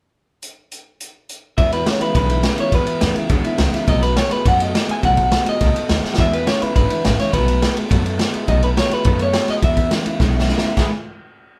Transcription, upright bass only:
1.58 1.88 E2 medium
2.00 muted upright bass stroke medium
2.15 2.45 B1 medium
2.58 muted upright bass stroke medium
2.72 2.82 E2 medium
2.87 muted upright bass stroke medium
3.02 3.14 E2 medium
3.16 muted upright bass stroke medium
3.30 3.42 D#2 medium
3.45 muted upright bass stroke medium
3.59 3.71 C#2 medium
3.88 4.18 B1 loud
4.45 4.76 F#2 medium
4.89 muted upright bass stroke medium
5.03 5.33 B1 loud
5.61 5.73 C#2 medium
5.90 6.02 D#2 medium
6.04 muted upright bass stroke medium
6.19 6.49 E2 loud
6.62 muted upright bass stroke medium
6.76 6.88 G#1 medium
6.91 muted upright bass stroke medium
7.05 7.17 A1 medium
7.20 muted upright bass stroke medium
7.33 7.63 B1 loud
7.77 muted upright bass stroke medium
7.91 8.21 F#2 medium
8.34 muted upright bass stroke medium
8.48 8.78 B1 loud
8.91 muted upright bass stroke medium
9.05 9.35 F#2 medium
9.49 muted upright bass stroke medium
9.62 9.93 E2 loud
10.06 muted upright bass stroke medium
10.20 10.50 B1 medium

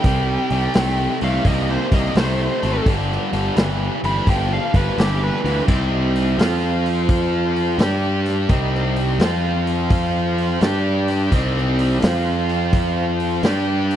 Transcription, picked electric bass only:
0.04 0.36 C2 loud
0.51 0.67 C2 medium
0.76 1.07 C2 loud
1.22 1.38 C2 medium
1.45 1.76 C2 medium
1.92 2.08 C2 medium
2.15 2.47 C2 loud
2.63 2.79 G#1 medium
2.85 3.17 G1 medium
3.33 3.49 G1 medium
3.57 3.88 G1 loud
4.04 4.20 G1 medium
4.26 4.58 G1 loud
4.74 4.90 G1 medium
4.98 5.29 G1 loud
5.44 5.60 D2 medium
5.68 6.35 C2 medium
6.38 7.75 F2 loud
7.78 8.46 G2 loud
8.49 9.16 C2 medium
9.19 10.57 F2 loud
10.61 11.28 G2 loud
11.31 11.98 C2 medium
12.03 13.40 F2 loud
13.43 13.96 G2 loud

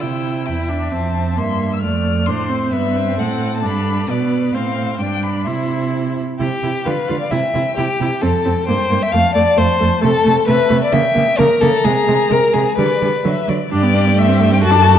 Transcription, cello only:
0.02 0.49 C3 soft
0.48 0.93 E2 soft
0.93 1.40 F2 soft
1.38 1.85 G2 soft
1.84 2.31 F2 medium
2.29 2.73 A2 soft
2.74 3.20 G2 medium
3.19 3.65 A2 medium
3.64 4.09 G2 medium
4.10 4.54 B2 soft
4.54 5.02 A2 medium
5.00 5.49 G2 soft
5.47 6.20 C3 soft
6.40 6.48 C3 medium
6.63 6.71 C3 soft
6.86 6.94 D3 medium
7.10 7.18 D3 medium
7.32 7.40 C3 medium
7.54 7.62 C3 medium
7.77 7.85 C3 medium
8.00 8.08 C3 medium
8.23 8.31 F2 medium
8.46 8.54 F2 medium
8.69 8.77 G2 medium
8.91 8.99 G2 medium
9.13 9.21 F2 medium
9.35 9.43 F2 medium
9.58 9.66 F2 medium
9.81 9.89 F2 medium
10.04 10.12 C3 medium
10.27 10.35 C3 medium
10.48 10.56 C3 medium
10.70 10.78 C3 medium
10.93 11.01 C#3 medium
11.16 11.24 C#3 medium
11.39 11.47 C#3 medium
11.62 11.70 C#3 medium
11.85 11.93 C3 medium
12.08 12.16 C3 medium
12.31 12.39 C3 medium
12.55 12.63 C3 medium
12.78 12.86 D3 medium
13.02 13.10 D3 medium
13.25 13.33 D3 medium
13.49 13.57 D3 medium
13.72 14.65 G2 medium
14.63 14.99 F#2 medium

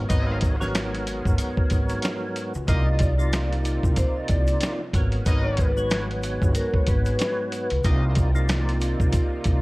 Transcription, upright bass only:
0.10 1.22 G#1 loud
1.26 1.36 G1 loud
1.72 1.96 G#1 medium
2.55 2.65 C#2 medium
2.69 3.80 C2 loud
3.84 3.94 C2 medium
4.30 4.54 C2 medium
4.94 5.19 G#1 loud
5.27 6.38 G#1 loud
6.42 6.52 G1 loud
6.88 7.13 G#1 loud
7.71 7.81 C#2 medium
7.85 8.96 C2 loud
9.00 9.10 C2 medium
9.46 9.62 C2 loud

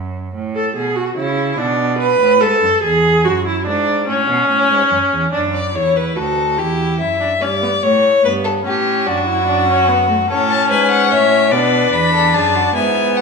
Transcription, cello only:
0.00 0.34 F#2 medium
0.35 0.75 A2 medium
0.76 1.16 B2 medium
1.17 1.58 C#3 medium
1.58 2.19 B2 medium
2.20 2.43 A2 medium
2.41 2.61 G#2 medium
2.62 2.70 F#2 medium
2.83 3.26 E2 medium
3.25 3.68 F#2 medium
3.66 4.09 G#2 medium
4.08 4.27 A2 medium
4.28 4.48 B2 medium
4.49 4.69 A2 medium
4.70 4.78 G#2 medium
4.91 4.99 F#2 medium
5.12 5.32 E2 medium
5.33 5.76 F#2 medium
5.74 6.16 E2 medium
6.16 6.60 D2 medium
6.58 7.01 E2 medium
7.00 7.41 F#2 medium
7.41 7.82 G2 medium
7.83 8.23 A2 medium
8.24 8.65 G2 medium
8.66 9.09 A2 medium
9.07 10.29 F#2 medium
10.29 10.72 A2 medium
10.70 11.13 G#2 medium
11.11 11.53 A2 medium
11.52 11.92 B2 medium
11.93 12.36 E2 medium
12.34 12.75 F#2 medium
12.75 13.21 G#2 medium

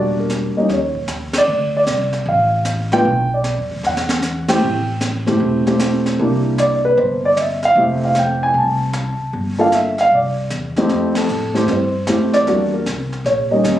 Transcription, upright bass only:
0.00 0.52 E1 medium
0.55 muted upright bass stroke soft
0.69 1.05 D#2 medium
1.08 1.45 D#2 medium
1.48 1.84 D2 medium
1.87 2.23 C2 medium
2.26 3.00 A1 medium
3.05 3.54 B1 medium
3.58 3.70 F2 medium
3.71 3.83 D2 medium
3.83 4.58 E2 medium
4.62 5.23 A1 medium
5.26 5.39 G#1 medium
5.40 6.15 E1 medium
6.19 6.94 C2 medium
6.97 7.72 G1 medium
7.75 8.50 F1 medium
8.54 9.16 C2 medium
9.19 muted upright bass stroke soft
9.33 10.08 G1 medium
10.11 10.48 C2 medium
10.50 10.87 E2 medium
10.90 11.28 F2 medium
11.28 11.66 A2 medium
11.67 12.06 G2 medium
12.47 12.85 E2 medium
12.86 13.24 C2 medium
13.24 13.63 A#1 medium
13.64 13.76 D#2 medium
13.76 13.79 C#2 soft

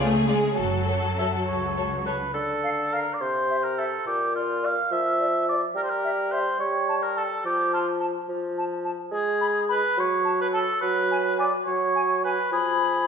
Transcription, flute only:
2.63 2.69 F5 soft
2.93 2.99 F5 soft
3.50 3.56 E5 soft
3.78 3.84 E5 soft
4.35 4.41 D5 soft
4.62 4.68 D5 soft
5.20 5.26 D5 soft
5.49 5.55 D5 soft
6.04 6.10 E5 soft
6.33 6.39 E5 soft
6.89 6.95 A5 soft
7.16 7.22 A5 soft
7.72 7.78 A5 soft
8.00 8.06 A5 soft
8.58 8.64 A5 soft
8.84 8.90 A5 soft
9.41 9.47 B5 soft
9.68 9.74 B5 soft
10.25 10.31 A5 soft
10.53 10.59 A5 soft
11.11 11.17 G#5 soft
11.38 11.44 G#5 soft
11.95 12.01 G#5 soft
12.24 12.30 G#5 soft
12.53 13.07 B5 soft

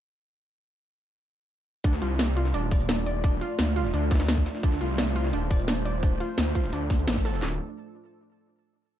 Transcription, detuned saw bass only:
1.84 2.00 D2 medium
2.02 2.53 C2 loud
2.54 3.40 D#1 loud
3.59 3.92 D2 medium
3.94 4.45 D2 loud
4.63 4.79 D2 medium
4.81 5.32 C2 loud
5.33 6.19 D#1 loud
6.38 6.71 D2 medium
6.73 7.06 D2 loud
7.08 7.41 A1 medium
7.42 7.59 D1 loud

